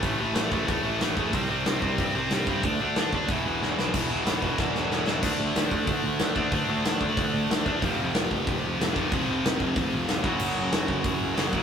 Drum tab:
CC |--------|--------|--------|x-------|
HH |o-o-o-o-|o-o-o-o-|o-o-o---|--o-----|
SD |--o---o-|--o---o-|--o---oo|--o-oooo|
BD |o--oo--o|o--oo--o|o--oo---|o--oo---|

CC |x-------|--------|--------|--------|
HH |--o-o-o-|o-o-o-o-|o-o-o-o-|o-o-o-o-|
SD |--o---o-|--o---o-|--o---o-|--o---o-|
BD |o--oo--o|o--oo--o|o--oo--o|o--oo--o|

CC |x-------|
HH |--o-o-o-|
SD |--o---o-|
BD |---oo--o|